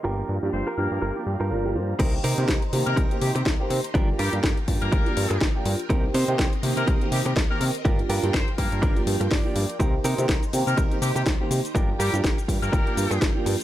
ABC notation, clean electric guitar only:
X:1
M:4/4
L:1/16
Q:"Swing 16ths" 1/4=123
K:Cm
V:1 name="Clean electric guitar"
[FGB]2 z3 [FGB] z2 [FGB]2 z [FGB]3 z2 | [CEGB] z [CEGB]3 z3 [CEGB]2 z6 | [DFGB] z [DFGB]3 z3 [DFGB]2 z6 | [CEGB] z [CEGc]3 z3 [CEGB]2 z6 |
[DFGB] z [DFGB]3 z3 [DFGB]2 z2 d4 | [CEGB] z [CEGB]3 z3 [CEGB]2 z6 | [DFGB] z [DFGB]3 z3 [DFGB]2 z6 |]